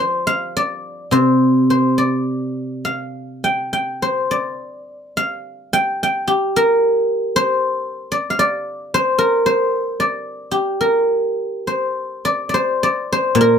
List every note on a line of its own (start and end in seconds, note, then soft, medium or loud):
0.00 2.27 F3 soft
0.00 1.12 C5 medium
0.00 0.56 D5 medium
0.00 0.26 F5 medium
0.27 1.94 F5 medium
0.57 1.98 D5 medium
1.11 4.57 C3 soft
1.11 1.70 C5 medium
1.70 3.68 C5 medium
1.98 3.83 D5 medium
2.85 4.52 F5 medium
3.44 3.73 G5 medium
3.73 5.28 G5 medium
4.02 6.01 C5 medium
4.31 6.16 D5 medium
5.17 6.84 F5 medium
5.73 6.03 G5 medium
6.03 7.58 G5 medium
6.28 8.63 G4 medium
6.56 8.69 A#4 medium
7.36 8.94 C5 medium
8.12 8.39 D5 medium
8.30 9.97 F5 soft
8.39 9.99 D5 medium
8.94 9.46 C5 medium
9.18 10.80 A#4 medium
9.46 11.04 C5 medium
10.00 10.84 D5 medium
10.51 12.87 G4 soft
10.81 12.93 A#4 medium
10.81 11.04 C#5 medium
11.04 11.67 C5 medium
11.67 12.54 C5 soft
12.25 12.49 D5 medium
12.49 12.83 D5 soft
12.54 13.12 C5 medium
12.83 13.59 D5 medium
13.12 13.59 C5 medium
13.35 13.59 A#2 medium
13.41 13.59 A#4 medium